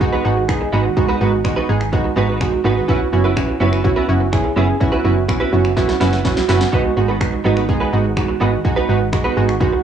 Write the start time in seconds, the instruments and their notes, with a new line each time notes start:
Already playing: fm bass G#1
0.00 analog polysynth G#3 B3 D#4 F#4, muted clean electric guitar stroke, kick
0.12 clean electric guitar B3 D#4 F#4 B4
0.25 fm bass G#1, analog polysynth G#3 B3 D#4 F#4, muted clean electric guitar stroke
0.37 muted clean electric guitar stroke
0.48 analog polysynth G#3 B3 D#4 G#4, finger snap, muted clean electric guitar stroke, kick
0.61 muted clean electric guitar stroke
0.72 fm bass G#1, analog polysynth G#3 B3 D#4 F#4, clean electric guitar B3 D#4 F#4 B4
0.85 muted clean electric guitar stroke
0.97 analog polysynth G#3 B3 D#4 F#4, muted clean electric guitar stroke, kick
1.09 clean electric guitar B3 D#4 F#4 B4
1.20 fm bass G#1, analog polysynth G#3 B3 D#4 F#4, clean electric guitar B3 D#4 F#4 B4
1.33 muted clean electric guitar stroke
1.44 analog polysynth G#3 B3 D#4 F#4, finger snap, muted clean electric guitar stroke, kick
1.56 clean electric guitar B3 D#4 F#4 B4
1.69 fm bass G#1, analog polysynth G#3 B3 D#4 G#4, muted clean electric guitar stroke
1.81 finger snap, muted clean electric guitar stroke
1.92 analog polysynth G#3 B3 D#4 F#4, muted clean electric guitar stroke, kick
2.04 muted clean electric guitar stroke
2.16 fm bass G#1, analog polysynth G#3 B3 D#4 F#4, clean electric guitar B3 D#4 F#4 B4
2.28 clean electric guitar B3 D#4 F#4 B4
2.40 analog polysynth G#3 B3 D#4 F#4, finger snap, muted clean electric guitar stroke, kick
2.52 muted clean electric guitar stroke
2.64 fm bass G#1, analog polysynth G#3 B3 D#4 F#4, clean electric guitar B3 D#4 F#4 B4
2.76 clean electric guitar B3 D#4 F#4 B4
2.88 clean electric guitar B3 E4 F#4 B4, analog polysynth B3 C#4 E4 F#4, kick
3.00 muted clean electric guitar stroke
3.12 fm bass F#1, analog polysynth B3 C#4 E4 F#4, muted clean electric guitar stroke
3.24 clean electric guitar B3 E4 F#4 B4
3.36 analog polysynth B3 C#4 E4 F#4, finger snap, muted clean electric guitar stroke, kick
3.48 muted clean electric guitar stroke
3.60 fm bass F#1, clean electric guitar B3 E4 F#4 B4, analog polysynth B3 C#4 E4 F#4
3.72 clean electric guitar B3 E4 F#4 B4, finger snap
3.84 analog polysynth B3 C#4 E4 F#4, muted clean electric guitar stroke, kick
3.96 clean electric guitar B3 E4 F#4 B4
4.08 fm bass F#1, analog polysynth B3 C#4 E4 F#4, muted clean electric guitar stroke
4.20 muted clean electric guitar stroke
4.32 analog polysynth B3 C#4 E4 G#4, finger snap, muted clean electric guitar stroke, kick
4.44 muted clean electric guitar stroke
4.56 fm bass F#1, clean electric guitar B3 E4 F#4 B4, analog polysynth B3 C#4 E4 G#4
4.68 muted clean electric guitar stroke
4.80 analog polysynth B3 C#4 E4 F#4, muted clean electric guitar stroke, kick
4.92 clean electric guitar B3 E4 F#4 B4
5.04 fm bass F#1, clean electric guitar B3 E4 F#4 B4, analog polysynth B3 C#4 E4 F#4
5.16 muted clean electric guitar stroke
5.28 analog polysynth B3 C#4 E4 F#4, finger snap, muted clean electric guitar stroke, kick
5.40 clean electric guitar B3 E4 F#4 B4
5.52 fm bass F#1, analog polysynth B3 C#4 E4 F#4, muted clean electric guitar stroke
5.64 finger snap, muted clean electric guitar stroke
5.76 analog polysynth B3 C#4 E4 F#4, muted clean electric guitar stroke, kick, snare
5.88 muted clean electric guitar stroke, snare
6.00 fm bass F#1, clean electric guitar B3 E4 F#4 B4, analog polysynth B3 C#4 E4 F#4, snare
6.12 clean electric guitar B3 E4 F#4 B4, snare
6.24 analog polysynth B3 C#4 E4 F#4, muted clean electric guitar stroke, kick, snare
6.36 muted clean electric guitar stroke, snare
6.48 fm bass F#1, clean electric guitar B3 E4 F#4 B4, analog polysynth B3 C#4 E4 F#4, snare
6.60 muted clean electric guitar stroke, snare
6.72 analog polysynth G#3 B3 D#4 F#4, clean electric guitar B3 D#4 F#4 B4, kick
6.84 muted clean electric guitar stroke
6.96 fm bass G#1, analog polysynth G#3 B3 D#4 F#4, muted clean electric guitar stroke
7.08 clean electric guitar B3 D#4 F#4 B4
7.20 analog polysynth G#3 B3 D#4 F#4, finger snap, muted clean electric guitar stroke, kick
7.32 muted clean electric guitar stroke
7.44 fm bass G#1, analog polysynth G#3 B3 D#4 F#4, clean electric guitar B3 D#4 F#4 B4
7.56 clean electric guitar B3 D#4 F#4 B4, finger snap
7.68 analog polysynth G#3 B3 D#4 G#4, muted clean electric guitar stroke, kick
7.80 clean electric guitar B3 D#4 F#4 B4
7.92 fm bass G#1, analog polysynth G#3 B3 D#4 F#4, muted clean electric guitar stroke
8.04 muted clean electric guitar stroke
8.16 analog polysynth G#3 B3 D#4 F#4, finger snap, muted clean electric guitar stroke, kick
8.28 muted clean electric guitar stroke
8.40 fm bass G#1, analog polysynth G#3 B3 D#4 F#4, clean electric guitar B3 D#4 F#4 B4
8.52 muted clean electric guitar stroke
8.64 analog polysynth G#3 B3 D#4 F#4, muted clean electric guitar stroke, kick
8.76 clean electric guitar B3 D#4 F#4 B4
8.88 fm bass G#1, analog polysynth G#3 B3 D#4 F#4, clean electric guitar B3 D#4 F#4 B4
9.00 muted clean electric guitar stroke
9.12 analog polysynth G#3 B3 D#4 F#4, finger snap, muted clean electric guitar stroke, kick
9.24 clean electric guitar B3 D#4 F#4 B4
9.36 fm bass G#1, analog polysynth G#3 B3 D#4 F#4, muted clean electric guitar stroke
9.48 finger snap, muted clean electric guitar stroke
9.60 analog polysynth G#3 B3 D#4 F#4, muted clean electric guitar stroke, kick
9.73 muted clean electric guitar stroke